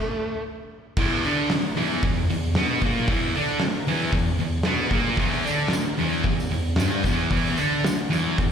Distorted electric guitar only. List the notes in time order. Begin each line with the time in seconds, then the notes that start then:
0.98 E2 E3
1.25 D3 D4
1.52 muted distorted electric guitar stroke
1.76 E2 E3
2.04 E2
2.30 E2
2.56 B2 B3
2.84 A#2 A#3
3.10 E2 E3
3.35 D3 D4
3.61 muted distorted electric guitar stroke
3.87 E2 E3
4.14 E2
4.40 E2
4.66 B2 B3
4.91 A#2 A#3
5.17 E2 E3
5.45 D3 D4
5.72 muted distorted electric guitar stroke
5.98 E2 E3
6.24 E2
6.52 E2
6.77 G2 G3
7.05 E2 E3
7.32 E2 E3
7.58 D3 D4
7.85 muted distorted electric guitar stroke
8.10 E2 E3
8.38 E2